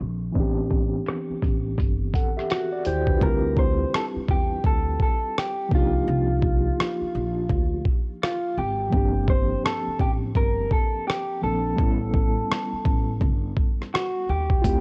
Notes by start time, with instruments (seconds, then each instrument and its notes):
Already playing: reed electric piano F3 A#3 C4 D4 A4
0.01 upright bass A#1
0.32 upright bass A1, reed electric piano E3 B3 C4, kick, closed hi-hat
0.38 reed electric piano D4 G4
0.71 kick, closed hi-hat
1.06 cross-stick, closed hi-hat
1.30 muted upright bass stroke
1.42 upright bass A1, kick, closed hi-hat
1.78 upright bass G1, kick, closed hi-hat
2.14 reed electric piano A4 F#5, kick, closed hi-hat
2.37 reed electric piano G4 E5, cross-stick
2.50 clean electric guitar F#4, cross-stick, closed hi-hat
2.72 reed electric piano F#4 D5
2.85 upright bass D#2, reed electric piano E4 C5, clean electric guitar G4, closed hi-hat
3.07 reed electric piano D4 B4, kick
3.18 upright bass D2, reed electric piano G3 C4 F4, kick
3.23 reed electric piano E4 G4, clean electric guitar A#4
3.57 clean electric guitar C5, kick
3.94 clean electric guitar A4, cross-stick
4.16 muted upright bass stroke
4.28 upright bass E2, clean electric guitar G4, kick
4.64 upright bass D2, clean electric guitar A4, kick
5.00 clean electric guitar A4, kick
5.38 clean electric guitar G4, cross-stick
5.69 upright bass C2, reed electric piano F3 A#3 D4, kick
5.74 reed electric piano D#4 G4, clean electric guitar F4
6.08 upright bass C2
6.42 kick
6.80 cross-stick
7.01 muted upright bass stroke
7.15 upright bass A#1
7.49 upright bass D2, kick
7.85 kick
8.23 clean electric guitar F4, cross-stick
8.57 upright bass G#1, clean electric guitar G4
8.90 upright bass G1, reed electric piano F3 A#3 C4, kick
8.95 reed electric piano D4 G4
9.28 clean electric guitar C5, kick
9.65 clean electric guitar A4, cross-stick
9.87 muted upright bass stroke
9.99 upright bass A1, clean electric guitar G4, kick
10.35 upright bass G1, clean electric guitar A#4, kick
10.71 clean electric guitar A4, kick
11.08 clean electric guitar G4, cross-stick
11.42 upright bass A#1, reed electric piano F3 A#3 C4 D4 A4, clean electric guitar A4
11.76 upright bass A1, reed electric piano G3 B3 C#4, kick
11.82 reed electric piano E4 A4
12.14 kick
12.51 cross-stick
12.73 muted upright bass stroke
12.85 upright bass A1, kick
13.21 upright bass G1, kick
13.57 kick
13.82 cross-stick
13.94 clean electric guitar F#4, cross-stick
14.29 upright bass D#2, clean electric guitar G4
14.50 kick
14.62 upright bass D2, reed electric piano A3 C4 F4, kick, closed hi-hat
14.67 reed electric piano E4 G4